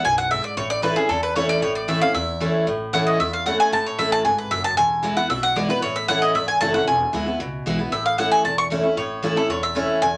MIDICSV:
0, 0, Header, 1, 4, 480
1, 0, Start_track
1, 0, Key_signature, 3, "major"
1, 0, Tempo, 262467
1, 1044, Time_signature, 4, 2, 24, 8
1, 18603, End_track
2, 0, Start_track
2, 0, Title_t, "Mandolin"
2, 0, Program_c, 0, 25
2, 88, Note_on_c, 0, 80, 95
2, 321, Note_off_c, 0, 80, 0
2, 328, Note_on_c, 0, 78, 92
2, 558, Note_off_c, 0, 78, 0
2, 567, Note_on_c, 0, 76, 77
2, 801, Note_off_c, 0, 76, 0
2, 805, Note_on_c, 0, 74, 81
2, 1036, Note_off_c, 0, 74, 0
2, 1043, Note_on_c, 0, 73, 75
2, 1275, Note_off_c, 0, 73, 0
2, 1282, Note_on_c, 0, 74, 102
2, 1512, Note_off_c, 0, 74, 0
2, 1519, Note_on_c, 0, 71, 81
2, 1757, Note_on_c, 0, 68, 85
2, 1758, Note_off_c, 0, 71, 0
2, 1992, Note_on_c, 0, 69, 76
2, 1993, Note_off_c, 0, 68, 0
2, 2235, Note_off_c, 0, 69, 0
2, 2249, Note_on_c, 0, 71, 86
2, 2479, Note_off_c, 0, 71, 0
2, 2488, Note_on_c, 0, 73, 83
2, 2721, Note_off_c, 0, 73, 0
2, 2729, Note_on_c, 0, 74, 102
2, 2959, Note_off_c, 0, 74, 0
2, 2968, Note_on_c, 0, 73, 83
2, 3200, Note_off_c, 0, 73, 0
2, 3207, Note_on_c, 0, 74, 84
2, 3439, Note_off_c, 0, 74, 0
2, 3445, Note_on_c, 0, 76, 81
2, 3677, Note_off_c, 0, 76, 0
2, 3684, Note_on_c, 0, 77, 94
2, 3916, Note_off_c, 0, 77, 0
2, 3923, Note_on_c, 0, 76, 84
2, 4597, Note_off_c, 0, 76, 0
2, 5367, Note_on_c, 0, 78, 85
2, 5603, Note_off_c, 0, 78, 0
2, 5609, Note_on_c, 0, 75, 89
2, 5840, Note_off_c, 0, 75, 0
2, 5850, Note_on_c, 0, 76, 78
2, 6084, Note_off_c, 0, 76, 0
2, 6097, Note_on_c, 0, 77, 88
2, 6324, Note_off_c, 0, 77, 0
2, 6332, Note_on_c, 0, 78, 82
2, 6566, Note_off_c, 0, 78, 0
2, 6581, Note_on_c, 0, 80, 96
2, 6807, Note_off_c, 0, 80, 0
2, 6825, Note_on_c, 0, 81, 96
2, 7053, Note_off_c, 0, 81, 0
2, 7067, Note_on_c, 0, 73, 67
2, 7290, Note_off_c, 0, 73, 0
2, 7291, Note_on_c, 0, 76, 82
2, 7526, Note_off_c, 0, 76, 0
2, 7539, Note_on_c, 0, 81, 111
2, 7761, Note_off_c, 0, 81, 0
2, 7768, Note_on_c, 0, 80, 81
2, 8004, Note_off_c, 0, 80, 0
2, 8019, Note_on_c, 0, 71, 71
2, 8246, Note_off_c, 0, 71, 0
2, 8247, Note_on_c, 0, 76, 86
2, 8483, Note_off_c, 0, 76, 0
2, 8493, Note_on_c, 0, 81, 106
2, 8718, Note_off_c, 0, 81, 0
2, 8726, Note_on_c, 0, 80, 91
2, 9399, Note_off_c, 0, 80, 0
2, 9450, Note_on_c, 0, 78, 85
2, 9681, Note_off_c, 0, 78, 0
2, 9689, Note_on_c, 0, 76, 78
2, 9924, Note_off_c, 0, 76, 0
2, 9932, Note_on_c, 0, 78, 105
2, 10162, Note_off_c, 0, 78, 0
2, 10174, Note_on_c, 0, 74, 75
2, 10407, Note_off_c, 0, 74, 0
2, 10422, Note_on_c, 0, 71, 82
2, 10643, Note_off_c, 0, 71, 0
2, 10650, Note_on_c, 0, 73, 83
2, 10885, Note_off_c, 0, 73, 0
2, 10895, Note_on_c, 0, 76, 88
2, 11119, Note_off_c, 0, 76, 0
2, 11127, Note_on_c, 0, 78, 104
2, 11363, Note_off_c, 0, 78, 0
2, 11372, Note_on_c, 0, 75, 90
2, 11602, Note_off_c, 0, 75, 0
2, 11614, Note_on_c, 0, 76, 75
2, 11844, Note_off_c, 0, 76, 0
2, 11851, Note_on_c, 0, 80, 91
2, 12075, Note_off_c, 0, 80, 0
2, 12082, Note_on_c, 0, 81, 102
2, 12321, Note_off_c, 0, 81, 0
2, 12328, Note_on_c, 0, 78, 83
2, 12560, Note_off_c, 0, 78, 0
2, 12574, Note_on_c, 0, 80, 80
2, 13937, Note_off_c, 0, 80, 0
2, 14489, Note_on_c, 0, 76, 75
2, 14724, Note_off_c, 0, 76, 0
2, 14733, Note_on_c, 0, 77, 88
2, 14960, Note_off_c, 0, 77, 0
2, 14967, Note_on_c, 0, 78, 81
2, 15200, Note_off_c, 0, 78, 0
2, 15207, Note_on_c, 0, 80, 97
2, 15439, Note_off_c, 0, 80, 0
2, 15450, Note_on_c, 0, 81, 92
2, 15684, Note_off_c, 0, 81, 0
2, 15695, Note_on_c, 0, 85, 106
2, 15836, Note_off_c, 0, 85, 0
2, 16415, Note_on_c, 0, 73, 78
2, 17083, Note_off_c, 0, 73, 0
2, 17139, Note_on_c, 0, 69, 69
2, 17364, Note_off_c, 0, 69, 0
2, 17375, Note_on_c, 0, 73, 77
2, 17606, Note_off_c, 0, 73, 0
2, 17613, Note_on_c, 0, 76, 86
2, 18057, Note_off_c, 0, 76, 0
2, 18323, Note_on_c, 0, 80, 99
2, 18603, Note_off_c, 0, 80, 0
2, 18603, End_track
3, 0, Start_track
3, 0, Title_t, "Steel-string acoustic guitar"
3, 0, Program_c, 1, 25
3, 81, Note_on_c, 1, 42, 85
3, 539, Note_off_c, 1, 42, 0
3, 559, Note_on_c, 1, 44, 84
3, 1019, Note_off_c, 1, 44, 0
3, 1045, Note_on_c, 1, 45, 91
3, 1506, Note_on_c, 1, 52, 93
3, 1520, Note_on_c, 1, 57, 86
3, 1532, Note_on_c, 1, 61, 86
3, 1538, Note_on_c, 1, 64, 93
3, 1733, Note_off_c, 1, 64, 0
3, 1749, Note_off_c, 1, 52, 0
3, 1755, Note_on_c, 1, 64, 58
3, 1756, Note_off_c, 1, 57, 0
3, 1762, Note_off_c, 1, 61, 0
3, 1786, Note_on_c, 1, 61, 49
3, 1958, Note_off_c, 1, 45, 0
3, 1990, Note_off_c, 1, 64, 0
3, 2003, Note_on_c, 1, 40, 86
3, 2005, Note_off_c, 1, 61, 0
3, 2477, Note_on_c, 1, 52, 87
3, 2490, Note_on_c, 1, 57, 93
3, 2503, Note_on_c, 1, 61, 89
3, 2508, Note_on_c, 1, 64, 97
3, 2918, Note_off_c, 1, 40, 0
3, 2938, Note_off_c, 1, 52, 0
3, 2945, Note_off_c, 1, 57, 0
3, 2951, Note_off_c, 1, 61, 0
3, 2954, Note_off_c, 1, 64, 0
3, 2969, Note_on_c, 1, 45, 89
3, 3435, Note_on_c, 1, 52, 84
3, 3447, Note_on_c, 1, 57, 88
3, 3458, Note_on_c, 1, 61, 93
3, 3470, Note_on_c, 1, 64, 87
3, 3663, Note_off_c, 1, 64, 0
3, 3674, Note_off_c, 1, 52, 0
3, 3680, Note_off_c, 1, 57, 0
3, 3685, Note_on_c, 1, 64, 59
3, 3686, Note_off_c, 1, 61, 0
3, 3715, Note_on_c, 1, 61, 51
3, 3881, Note_off_c, 1, 45, 0
3, 3915, Note_off_c, 1, 64, 0
3, 3921, Note_on_c, 1, 40, 85
3, 3930, Note_off_c, 1, 61, 0
3, 4398, Note_on_c, 1, 52, 91
3, 4409, Note_on_c, 1, 57, 91
3, 4419, Note_on_c, 1, 61, 90
3, 4431, Note_on_c, 1, 64, 85
3, 4837, Note_off_c, 1, 40, 0
3, 4859, Note_off_c, 1, 52, 0
3, 4865, Note_off_c, 1, 57, 0
3, 4870, Note_off_c, 1, 61, 0
3, 4876, Note_off_c, 1, 64, 0
3, 4884, Note_on_c, 1, 45, 90
3, 5359, Note_on_c, 1, 52, 93
3, 5368, Note_on_c, 1, 57, 90
3, 5381, Note_on_c, 1, 61, 100
3, 5387, Note_on_c, 1, 64, 102
3, 5799, Note_off_c, 1, 45, 0
3, 5820, Note_off_c, 1, 52, 0
3, 5824, Note_off_c, 1, 57, 0
3, 5831, Note_off_c, 1, 61, 0
3, 5834, Note_off_c, 1, 64, 0
3, 5850, Note_on_c, 1, 40, 84
3, 6322, Note_on_c, 1, 52, 89
3, 6336, Note_on_c, 1, 57, 88
3, 6345, Note_on_c, 1, 61, 92
3, 6357, Note_on_c, 1, 64, 97
3, 6762, Note_off_c, 1, 40, 0
3, 6781, Note_off_c, 1, 52, 0
3, 6789, Note_off_c, 1, 57, 0
3, 6793, Note_off_c, 1, 61, 0
3, 6799, Note_off_c, 1, 64, 0
3, 6811, Note_on_c, 1, 45, 84
3, 7284, Note_on_c, 1, 52, 79
3, 7299, Note_on_c, 1, 57, 96
3, 7310, Note_on_c, 1, 61, 96
3, 7317, Note_on_c, 1, 64, 91
3, 7722, Note_off_c, 1, 45, 0
3, 7743, Note_off_c, 1, 52, 0
3, 7750, Note_off_c, 1, 57, 0
3, 7756, Note_off_c, 1, 61, 0
3, 7759, Note_off_c, 1, 64, 0
3, 7771, Note_on_c, 1, 44, 83
3, 8226, Note_off_c, 1, 44, 0
3, 8249, Note_on_c, 1, 42, 86
3, 8705, Note_off_c, 1, 42, 0
3, 8732, Note_on_c, 1, 40, 90
3, 9192, Note_on_c, 1, 52, 85
3, 9204, Note_on_c, 1, 56, 94
3, 9215, Note_on_c, 1, 59, 95
3, 9224, Note_on_c, 1, 64, 101
3, 9425, Note_off_c, 1, 64, 0
3, 9433, Note_off_c, 1, 52, 0
3, 9439, Note_off_c, 1, 56, 0
3, 9445, Note_off_c, 1, 59, 0
3, 9447, Note_on_c, 1, 64, 60
3, 9476, Note_on_c, 1, 59, 49
3, 9643, Note_off_c, 1, 40, 0
3, 9677, Note_off_c, 1, 64, 0
3, 9688, Note_on_c, 1, 47, 85
3, 9692, Note_off_c, 1, 59, 0
3, 10163, Note_on_c, 1, 52, 84
3, 10175, Note_on_c, 1, 56, 89
3, 10185, Note_on_c, 1, 59, 83
3, 10193, Note_on_c, 1, 64, 89
3, 10379, Note_off_c, 1, 64, 0
3, 10399, Note_off_c, 1, 52, 0
3, 10401, Note_on_c, 1, 64, 62
3, 10405, Note_off_c, 1, 56, 0
3, 10410, Note_off_c, 1, 59, 0
3, 10434, Note_on_c, 1, 59, 50
3, 10601, Note_off_c, 1, 47, 0
3, 10634, Note_off_c, 1, 64, 0
3, 10650, Note_off_c, 1, 59, 0
3, 10655, Note_on_c, 1, 45, 86
3, 11129, Note_on_c, 1, 52, 96
3, 11140, Note_on_c, 1, 57, 90
3, 11151, Note_on_c, 1, 61, 94
3, 11160, Note_on_c, 1, 64, 93
3, 11564, Note_off_c, 1, 45, 0
3, 11585, Note_off_c, 1, 52, 0
3, 11591, Note_off_c, 1, 57, 0
3, 11596, Note_off_c, 1, 61, 0
3, 11601, Note_off_c, 1, 64, 0
3, 11615, Note_on_c, 1, 40, 86
3, 12086, Note_on_c, 1, 52, 88
3, 12098, Note_on_c, 1, 57, 92
3, 12108, Note_on_c, 1, 61, 89
3, 12116, Note_on_c, 1, 64, 89
3, 12304, Note_off_c, 1, 64, 0
3, 12320, Note_off_c, 1, 52, 0
3, 12326, Note_off_c, 1, 57, 0
3, 12326, Note_on_c, 1, 64, 60
3, 12331, Note_off_c, 1, 61, 0
3, 12362, Note_on_c, 1, 61, 50
3, 12524, Note_off_c, 1, 40, 0
3, 12556, Note_off_c, 1, 64, 0
3, 12574, Note_off_c, 1, 61, 0
3, 12576, Note_on_c, 1, 40, 89
3, 13039, Note_on_c, 1, 52, 88
3, 13050, Note_on_c, 1, 56, 85
3, 13062, Note_on_c, 1, 59, 88
3, 13070, Note_on_c, 1, 64, 96
3, 13258, Note_off_c, 1, 64, 0
3, 13276, Note_off_c, 1, 52, 0
3, 13280, Note_on_c, 1, 64, 57
3, 13282, Note_off_c, 1, 56, 0
3, 13288, Note_off_c, 1, 59, 0
3, 13311, Note_on_c, 1, 59, 51
3, 13484, Note_off_c, 1, 40, 0
3, 13513, Note_off_c, 1, 64, 0
3, 13529, Note_off_c, 1, 59, 0
3, 13533, Note_on_c, 1, 47, 88
3, 14008, Note_on_c, 1, 52, 85
3, 14021, Note_on_c, 1, 56, 93
3, 14029, Note_on_c, 1, 59, 87
3, 14036, Note_on_c, 1, 64, 106
3, 14219, Note_off_c, 1, 64, 0
3, 14241, Note_off_c, 1, 52, 0
3, 14241, Note_on_c, 1, 64, 62
3, 14247, Note_off_c, 1, 56, 0
3, 14251, Note_off_c, 1, 59, 0
3, 14276, Note_on_c, 1, 59, 50
3, 14443, Note_off_c, 1, 47, 0
3, 14474, Note_off_c, 1, 64, 0
3, 14484, Note_on_c, 1, 45, 86
3, 14491, Note_off_c, 1, 59, 0
3, 14961, Note_on_c, 1, 52, 87
3, 14973, Note_on_c, 1, 57, 83
3, 14982, Note_on_c, 1, 61, 93
3, 14990, Note_on_c, 1, 64, 97
3, 15398, Note_off_c, 1, 45, 0
3, 15420, Note_off_c, 1, 52, 0
3, 15426, Note_off_c, 1, 57, 0
3, 15431, Note_off_c, 1, 61, 0
3, 15435, Note_off_c, 1, 64, 0
3, 15450, Note_on_c, 1, 40, 81
3, 15916, Note_on_c, 1, 52, 78
3, 15931, Note_on_c, 1, 57, 84
3, 15942, Note_on_c, 1, 61, 89
3, 15948, Note_on_c, 1, 64, 92
3, 16136, Note_off_c, 1, 64, 0
3, 16154, Note_off_c, 1, 52, 0
3, 16158, Note_on_c, 1, 64, 58
3, 16162, Note_off_c, 1, 57, 0
3, 16168, Note_off_c, 1, 61, 0
3, 16189, Note_on_c, 1, 61, 44
3, 16360, Note_off_c, 1, 40, 0
3, 16391, Note_off_c, 1, 64, 0
3, 16407, Note_off_c, 1, 61, 0
3, 16407, Note_on_c, 1, 45, 85
3, 16871, Note_on_c, 1, 52, 96
3, 16886, Note_on_c, 1, 57, 99
3, 16896, Note_on_c, 1, 61, 92
3, 16904, Note_on_c, 1, 64, 94
3, 17100, Note_off_c, 1, 64, 0
3, 17112, Note_off_c, 1, 52, 0
3, 17119, Note_off_c, 1, 57, 0
3, 17122, Note_on_c, 1, 64, 64
3, 17124, Note_off_c, 1, 61, 0
3, 17149, Note_on_c, 1, 61, 45
3, 17319, Note_off_c, 1, 45, 0
3, 17353, Note_off_c, 1, 64, 0
3, 17367, Note_off_c, 1, 61, 0
3, 17367, Note_on_c, 1, 40, 89
3, 17830, Note_on_c, 1, 52, 86
3, 17844, Note_on_c, 1, 57, 95
3, 17853, Note_on_c, 1, 61, 103
3, 17860, Note_on_c, 1, 64, 92
3, 18279, Note_off_c, 1, 40, 0
3, 18294, Note_off_c, 1, 52, 0
3, 18301, Note_off_c, 1, 57, 0
3, 18305, Note_off_c, 1, 61, 0
3, 18308, Note_off_c, 1, 64, 0
3, 18328, Note_on_c, 1, 40, 88
3, 18603, Note_off_c, 1, 40, 0
3, 18603, End_track
4, 0, Start_track
4, 0, Title_t, "Upright bass"
4, 0, Program_c, 2, 32
4, 83, Note_on_c, 2, 35, 81
4, 694, Note_off_c, 2, 35, 0
4, 1041, Note_on_c, 2, 33, 91
4, 1653, Note_off_c, 2, 33, 0
4, 1995, Note_on_c, 2, 40, 85
4, 2609, Note_off_c, 2, 40, 0
4, 2958, Note_on_c, 2, 33, 86
4, 3571, Note_off_c, 2, 33, 0
4, 3922, Note_on_c, 2, 40, 86
4, 4534, Note_off_c, 2, 40, 0
4, 4887, Note_on_c, 2, 33, 92
4, 5497, Note_off_c, 2, 33, 0
4, 5847, Note_on_c, 2, 40, 83
4, 6457, Note_off_c, 2, 40, 0
4, 6803, Note_on_c, 2, 33, 81
4, 7109, Note_off_c, 2, 33, 0
4, 7287, Note_on_c, 2, 33, 79
4, 7696, Note_off_c, 2, 33, 0
4, 7762, Note_on_c, 2, 32, 83
4, 8173, Note_off_c, 2, 32, 0
4, 8242, Note_on_c, 2, 30, 80
4, 8653, Note_off_c, 2, 30, 0
4, 8724, Note_on_c, 2, 28, 86
4, 9335, Note_off_c, 2, 28, 0
4, 9684, Note_on_c, 2, 35, 80
4, 10295, Note_off_c, 2, 35, 0
4, 10643, Note_on_c, 2, 33, 82
4, 11254, Note_off_c, 2, 33, 0
4, 11603, Note_on_c, 2, 32, 84
4, 12013, Note_off_c, 2, 32, 0
4, 12090, Note_on_c, 2, 30, 81
4, 12497, Note_off_c, 2, 30, 0
4, 12572, Note_on_c, 2, 28, 93
4, 12876, Note_off_c, 2, 28, 0
4, 13048, Note_on_c, 2, 38, 81
4, 13456, Note_off_c, 2, 38, 0
4, 13538, Note_on_c, 2, 37, 85
4, 13942, Note_off_c, 2, 37, 0
4, 14008, Note_on_c, 2, 35, 82
4, 14416, Note_off_c, 2, 35, 0
4, 14484, Note_on_c, 2, 33, 88
4, 15095, Note_off_c, 2, 33, 0
4, 15443, Note_on_c, 2, 28, 78
4, 16053, Note_off_c, 2, 28, 0
4, 16401, Note_on_c, 2, 33, 82
4, 17012, Note_off_c, 2, 33, 0
4, 17364, Note_on_c, 2, 28, 82
4, 17974, Note_off_c, 2, 28, 0
4, 18328, Note_on_c, 2, 28, 87
4, 18603, Note_off_c, 2, 28, 0
4, 18603, End_track
0, 0, End_of_file